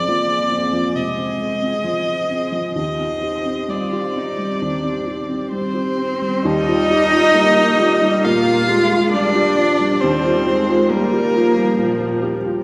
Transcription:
Already playing: F2 C4 G#4 C5 D5 G#5
0.08 F3 A#3
0.30 G#4
0.52 C4
0.73 F3
0.95 C3 G#3 D#5
1.18 C4
1.40 G#4
1.62 C4
1.84 F3 C4
2.07 G#4
2.30 C4
2.52 F3
2.76 D#2 C4 G4 C5 D#5
2.99 C4
3.23 G4
3.46 C4
3.68 G3 F4 D5
3.93 G4
4.16 C4 D#4
4.39 G3
4.61 D#2 D4
4.84 C4
5.06 C4 G4
5.30 C4
5.52 G3 C4 C5
5.75 G4
5.98 C4
6.22 G3
6.42 D#2 G3 D#4 F4 G4 A#4 D#5
6.67 F4
6.90 G4
7.13 F4
7.34 G3 A#3
7.58 G4
7.79 G3 F4
8.02 G3
8.23 A#2 A#3 F4 F5
8.46 F4
8.68 G#3 G4
8.90 F4
9.11 G3 D4 D5
9.35 G4
9.57 F3 F4
9.80 G3
10.00 D#2 G3 C4 F4 G4 A#4 C5
10.25 F4
10.46 G#3 G4
10.69 F4
10.90 G3 A#3 A#4
11.13 G4
11.35 F3 F4
11.56 G3
11.79 A#2
12.01 F4
12.23 G4
12.45 F4

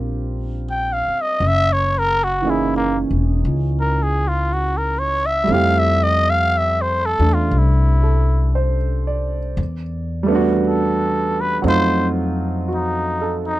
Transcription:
Already playing: A#1 G3 A#3 C4 D4 F4 G4 A#4
0.70 G5
0.93 F5
1.08 muted upright bass stroke
1.21 D#5
1.40 F#1
1.47 E5
1.72 C#5
1.99 A#4
2.24 F#4
2.42 E3 A#3 C#4 D#4
2.47 E4 G#4
2.77 A#3
3.11 E1
3.45 C#2
3.80 A#4
4.03 G#4
4.28 F4
4.53 F#4
4.77 A#4
4.99 C#5
5.26 E5
5.44 G3 A3
5.48 F2 C4 E4 F5
5.54 G4
5.79 E5
6.03 D#5
6.30 F5
6.57 E5
6.82 C5
7.06 A4
7.19 E2 A3 D4
7.34 F4
7.51 C2
7.58 E4
8.03 A4
8.55 C5
9.07 D5
9.57 E2
10.23 G3 A3
10.28 B3 D4
10.35 F#4
10.67 A4
11.41 B4
11.62 F2 F#3 A3 C4
11.66 D#4 F4 C5
12.68 F#4
12.75 D#4
13.21 A4
13.47 D#4

